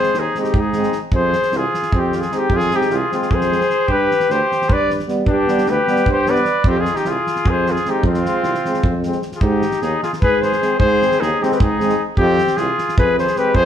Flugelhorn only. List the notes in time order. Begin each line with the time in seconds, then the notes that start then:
Already playing: C5
0.20 G#4
0.41 G4
0.60 G#4
1.16 C5
1.57 G#4
1.99 G4
2.20 G#4
2.37 G4
2.56 G#4
2.76 G4
2.96 G#4
3.18 G#4
3.35 C5
3.92 B4
4.31 C5
4.73 D5
5.30 G4
5.70 B4
6.11 C5
6.30 D5
6.69 G4
6.80 G#4
6.96 G4
7.10 G#4
7.50 C5
7.71 G#4
7.90 G4
8.06 F4
9.37 G#4
9.42 G4
9.82 G#4
10.03 G#4
10.22 B4
10.42 C5
10.80 C5
11.20 G#4
11.42 G4
11.52 B4
11.60 G#4
12.18 G4
12.57 G#4
12.98 B4
13.19 C5
13.38 B4
13.55 C5